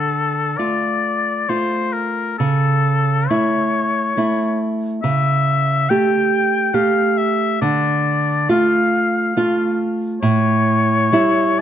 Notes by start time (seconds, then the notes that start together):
Already playing: D3 A4
0.57 A3 F4 D5
1.49 A3 F4 C5
1.93 A#4
2.38 C#3 A4
3.28 A3 E4 C#5
4.17 A3 E4
5.02 C#3 E5
5.89 A3 G4 G5
6.74 A3 G4 F5
7.17 E5
7.61 D3 D5
8.49 A3 F4 F5
9.37 A3 F4
10.22 A2 C#5
11.12 G3 E4